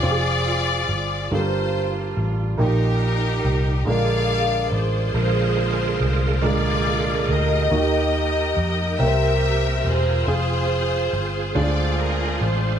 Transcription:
<<
  \new Staff \with { instrumentName = "String section" } { \time 6/8 \key ees \major \tempo 4. = 47 << { d''4. c''4 r8 | bes'4. f''4 c''8~ | c''4. d''4 ees''8~ | ees''4. e''4 c''8~ |
c''4. d''8 bes'8 c''8 | } \\ { <f' aes'>4. f'4. | <ees' g'>4. <aes' d''>4 <f' aes'>8~ | <f' aes'>4. <f' aes'>4 <g' bes'>8~ | <g' bes'>4. <g' bes'>4 <f' aes'>8~ |
<f' aes'>4. <f' aes'>4. | } >> }
  \new Staff \with { instrumentName = "Grand piano" } { \time 6/8 \key ees \major <c' f' g' aes'>4. <g bes d' f' a' bes'>4. | <bes ees' g'>4. <aes bes d' f' bes'>4.~ | <aes bes d' f' bes'>4. <d aes bes f' bes'>4. | <bes ees' ges' g'>4. <bes c' bes' c'' e'' g''>4. |
<c' f' aes'>4. <c' d' f' aes' c'' d''>4. | }
  \new Staff \with { instrumentName = "Grand piano" } { \clef bass \time 6/8 \key ees \major r4. g,4. | bes,4. d4. | r4. bes,4. | ees4. c4. |
r4. d4. | }
  \new Staff \with { instrumentName = "Tonewheel organ" } { \time 6/8 \key ees \major r2. | r2. | <d aes bes f' bes'>2. | <bes ees' g'>4. <bes c' bes' e''>4. |
<c' f' aes'>4. <aes c' d' f' c''>4. | }
  \new Staff \with { instrumentName = "Fingered electric bass" } { \clef bass \time 6/8 \key ees \major f,,4 g,,8 g,,4 a,,8 | bes,,4 c,8 bes,,4 a,,8 | bes,,4 c,4. d,8 | ees,4 f,8 c,4 e,,8 |
f,,4 g,,8 d,4 a,,8 | }
>>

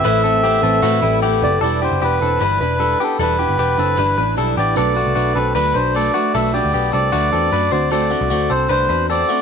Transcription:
<<
  \new Staff \with { instrumentName = "Melodica" } { \time 4/4 \key e \minor \tempo 4 = 153 e''2. r8 d''8 | d''8 c''8 b'4 b'4. a'8 | b'2. r8 d''8 | d''4. b'8 b'8 c''8 d''4 |
e''8 d''4 d''2 d''8 | d''4. c''8 c''4 d''4 | }
  \new Staff \with { instrumentName = "Vibraphone" } { \time 4/4 \key e \minor a'2. a'4 | r1 | r1 | r1 |
r1 | r1 | }
  \new Staff \with { instrumentName = "Reed electric piano" } { \time 4/4 \key e \minor <c' a' b'>2.~ <c' a' b'>8 <c' a' d''>8 | <e' g' d''>1~ | <e' g' d''>2. <e' g' d''>4 | <d' a' b'>1~ |
<d' a' b'>2.~ <d' a' b'>8 <d' fis' c''>8~ | <d' fis' c''>1 | }
  \new Staff \with { instrumentName = "Clean electric guitar" } { \time 4/4 \key e \minor <e' b'>8 <c' a'>8 <b g'>8 <c' a'>8 <a fis'>8 <g e'>8 <b g'>4 | <d' a'>8 <b g'>8 <b g'>8 <c' a'>8 <d' b'>8 <d' b'>8 <d' a'>8 <b g'>8 | <d' a'>8 <b g'>8 <b g'>8 <c' a'>8 <d' b'>8 <d' b'>8 <d' a'>8 <b g'>8 | <d' a'>8 <a fis'>8 <a fis'>8 <c' a'>8 <d' b'>8 <d' b'>8 <d' a'>8 <a fis'>8 |
<d' a'>8 <b g'>8 <b g'>8 <c' a'>8 <a fis'>8 <c' a'>8 <d' b'>8 <fis' c''>8 | <c' a'>8 <a fis'>8 <a fis'>8 <c' a'>8 <d' b'>8 <d' b'>8 <c' a'>8 <a fis'>8 | }
  \new Staff \with { instrumentName = "Steel-string acoustic guitar" } { \time 4/4 \key e \minor <a, e a c' e' b'>8 <a c' e' b'>8 <a c' e' b'>8 <a c' e' b'>8 <a, e a c' e' b'>8 <a c' e' b'>8 <a c' e' b'>8 <a c' e' b'>8 | <e g d' e' b'>8 <d' e' b'>8 <g d' e' b'>8 <d' e' b'>8 <e g d' e' b'>8 <d' e' b'>8 <g d' e' b'>8 <d' e' b'>8 | <e g d' e' b'>8 <d' e' b'>8 <g d' e' b'>8 <d' e' b'>8 <e g d' e' b'>8 <d' e' b'>8 <g d' e' b'>8 <d' e' b'>8 | <b, fis a d' fis' b'>8 <a d' fis' b'>8 <a d' fis' b'>8 <a d' fis' b'>8 <b, fis a d' fis' b'>8 <a d' fis' b'>8 <a d' fis' b'>8 <a d' fis' b'>8 |
<b, fis a d' fis' b'>8 <a d' fis' b'>8 <a d' fis' b'>8 <a d' fis' b'>8 <b, fis a d' fis' b'>8 <a d' fis' b'>8 <a d' fis' b'>8 <c' fis' c''>8 | <d a c' fis' c''>8 <c' fis' c''>8 <a c' fis' c''>8 <c' fis' c''>8 <d a c' fis' c''>8 <c' fis' c''>8 <a c' fis' c''>8 <c' fis' c''>8 | }
  \new Staff \with { instrumentName = "Picked electric bass" } { \clef bass \time 4/4 \key e \minor a,,4. a,,8 a,8 a,,4 fis,,8 | e,,8. fis,,16 e,,8 e,,8 g,,8 e,,4 r8 | e,,8. g,,16 e,,8 fis,,8 g,,8 a,,8 b,,8 a,,8 | b,,8. c,16 b,,8 b,,8 d,8 b,,4 r8 |
b,,8. d,16 b,,8 c,8 d,8 e,8 fis,8 d,8~ | d,8. c,16 d,8 c,8 c,8 e,4 r8 | }
>>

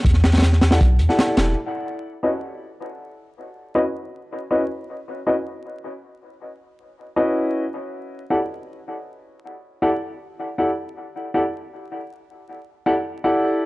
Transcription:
<<
  \new Staff \with { instrumentName = "Grand piano" } { \time 4/4 \key cis \minor \tempo 4 = 158 r4. r16 <e' g' a' d'' fis''>16 r8. <e' g' a' d'' fis''>4~ <e' g' a' d'' fis''>16 | r4. r16 <cis' e' fis' b' dis''>16 r2 | r4. r16 <cis' e' fis' b' dis''>16 r4. r16 <cis' e' fis' b' dis''>16 | r4. r16 <cis' e' fis' b' dis''>16 r2 |
r2 r8. <cis' e' fis' b' dis''>4~ <cis' e' fis' b' dis''>16 | r4. r16 <e' g' a' d'' fis''>16 r2 | r4. r16 <e' g' a' d'' fis''>16 r4. r16 <e' g' a' d'' fis''>16 | r4. r16 <e' g' a' d'' fis''>16 r2 |
r4. r16 <e' g' a' d'' fis''>16 r8. <e' g' a' d'' fis''>4~ <e' g' a' d'' fis''>16 | }
  \new Staff \with { instrumentName = "808-style bass" } { \clef bass \time 4/4 \key cis \minor e,2 b,,8 e,8 r8 e,,8 | r1 | r1 | r1 |
r1 | r1 | r1 | r1 |
r1 | }
  \new DrumStaff \with { instrumentName = "Drums" } \drummode { \time 4/4 <hh bd>16 sn16 <hh sn>16 <hh sn>32 <hh sn>32 <hh sn>16 sn16 <hh sn>16 <hh sn>16 <hh bd>8 hh16 sn16 <hh sn>8 <hh sn>8 | r4 r4 r4 r4 | r4 r4 r4 r4 | r4 r4 r4 r4 |
r4 r4 r4 r4 | r4 r4 r4 r4 | r4 r4 r4 r4 | r4 r4 r4 r4 |
r4 r4 r4 r4 | }
>>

